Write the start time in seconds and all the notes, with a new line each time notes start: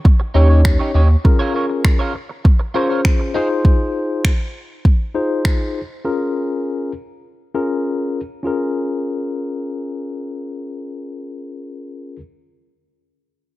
0.05 muted clean electric guitar stroke, kick
0.20 muted clean electric guitar stroke
0.34 D#2 C#4 D#4 G4 C#5
0.49 D#4 G4 C#5
0.65 finger snap, muted clean electric guitar stroke, kick
0.79 D#4 G4 C#5
0.94 D#2 D#4 G4 C#5
1.24 C#4 F4 G#4 A#4, muted clean electric guitar stroke, kick
1.39 F4 A#4 C#5
1.54 F4 A#4 C#5
1.69 muted clean electric guitar stroke
1.84 finger snap, muted clean electric guitar stroke, kick
1.99 F4 A#4 C#5
2.14 muted clean electric guitar stroke
2.29 muted clean electric guitar stroke
2.45 muted clean electric guitar stroke, kick
2.60 muted clean electric guitar stroke
2.74 C#4 F4 G#4 A#4 C5 C#5
2.89 F4 A#4 C#5
3.05 finger snap, muted clean electric guitar stroke, kick
3.20 muted clean electric guitar stroke
3.34 D#4 F4 G#4 C5
3.50 muted clean electric guitar stroke
3.65 kick
4.25 finger snap, kick
4.85 kick
5.15 D#4 F4 G#4 C5
5.45 finger snap, kick
6.05 C#4 F4 G#4 A#4
7.54 C#4 F4 G#4 A#4
8.43 C#4 F4 G#4 A#4